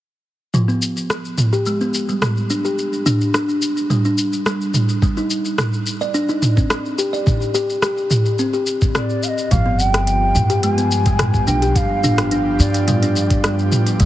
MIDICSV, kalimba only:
0, 0, Header, 1, 2, 480
1, 0, Start_track
1, 0, Tempo, 560748
1, 461, Time_signature, 4, 2, 24, 8
1, 12030, End_track
2, 0, Start_track
2, 0, Title_t, "Kalimba"
2, 0, Program_c, 0, 108
2, 461, Note_on_c, 0, 53, 68
2, 574, Note_off_c, 0, 53, 0
2, 583, Note_on_c, 0, 59, 64
2, 694, Note_off_c, 0, 59, 0
2, 1307, Note_on_c, 0, 67, 68
2, 1410, Note_off_c, 0, 67, 0
2, 1424, Note_on_c, 0, 56, 72
2, 1536, Note_off_c, 0, 56, 0
2, 1550, Note_on_c, 0, 59, 68
2, 1657, Note_off_c, 0, 59, 0
2, 1787, Note_on_c, 0, 55, 65
2, 2130, Note_off_c, 0, 55, 0
2, 2141, Note_on_c, 0, 62, 65
2, 2254, Note_off_c, 0, 62, 0
2, 2266, Note_on_c, 0, 67, 65
2, 2609, Note_off_c, 0, 67, 0
2, 2619, Note_on_c, 0, 62, 92
2, 2740, Note_off_c, 0, 62, 0
2, 2860, Note_on_c, 0, 62, 74
2, 2980, Note_off_c, 0, 62, 0
2, 3340, Note_on_c, 0, 55, 71
2, 3460, Note_off_c, 0, 55, 0
2, 3467, Note_on_c, 0, 62, 67
2, 3576, Note_off_c, 0, 62, 0
2, 3821, Note_on_c, 0, 55, 72
2, 4290, Note_off_c, 0, 55, 0
2, 4300, Note_on_c, 0, 55, 73
2, 4414, Note_off_c, 0, 55, 0
2, 4427, Note_on_c, 0, 63, 69
2, 4535, Note_off_c, 0, 63, 0
2, 5145, Note_on_c, 0, 74, 75
2, 5249, Note_off_c, 0, 74, 0
2, 5258, Note_on_c, 0, 62, 80
2, 5373, Note_off_c, 0, 62, 0
2, 5384, Note_on_c, 0, 63, 72
2, 5494, Note_off_c, 0, 63, 0
2, 5622, Note_on_c, 0, 60, 66
2, 5967, Note_off_c, 0, 60, 0
2, 5978, Note_on_c, 0, 67, 75
2, 6093, Note_off_c, 0, 67, 0
2, 6103, Note_on_c, 0, 74, 76
2, 6448, Note_off_c, 0, 74, 0
2, 6458, Note_on_c, 0, 67, 95
2, 6579, Note_off_c, 0, 67, 0
2, 6702, Note_on_c, 0, 67, 81
2, 6821, Note_off_c, 0, 67, 0
2, 7182, Note_on_c, 0, 60, 79
2, 7301, Note_off_c, 0, 60, 0
2, 7306, Note_on_c, 0, 67, 68
2, 7415, Note_off_c, 0, 67, 0
2, 7661, Note_on_c, 0, 60, 76
2, 8130, Note_off_c, 0, 60, 0
2, 8140, Note_on_c, 0, 53, 76
2, 8254, Note_off_c, 0, 53, 0
2, 8266, Note_on_c, 0, 59, 68
2, 8375, Note_off_c, 0, 59, 0
2, 8985, Note_on_c, 0, 67, 73
2, 9089, Note_off_c, 0, 67, 0
2, 9102, Note_on_c, 0, 56, 79
2, 9215, Note_off_c, 0, 56, 0
2, 9226, Note_on_c, 0, 59, 71
2, 9335, Note_off_c, 0, 59, 0
2, 9468, Note_on_c, 0, 55, 72
2, 9810, Note_off_c, 0, 55, 0
2, 9820, Note_on_c, 0, 62, 69
2, 9934, Note_off_c, 0, 62, 0
2, 9949, Note_on_c, 0, 67, 75
2, 10291, Note_off_c, 0, 67, 0
2, 10305, Note_on_c, 0, 62, 94
2, 10422, Note_off_c, 0, 62, 0
2, 10545, Note_on_c, 0, 62, 84
2, 10663, Note_off_c, 0, 62, 0
2, 11023, Note_on_c, 0, 55, 80
2, 11142, Note_off_c, 0, 55, 0
2, 11150, Note_on_c, 0, 62, 74
2, 11257, Note_off_c, 0, 62, 0
2, 11503, Note_on_c, 0, 55, 76
2, 11971, Note_off_c, 0, 55, 0
2, 11984, Note_on_c, 0, 55, 84
2, 12030, Note_off_c, 0, 55, 0
2, 12030, End_track
0, 0, End_of_file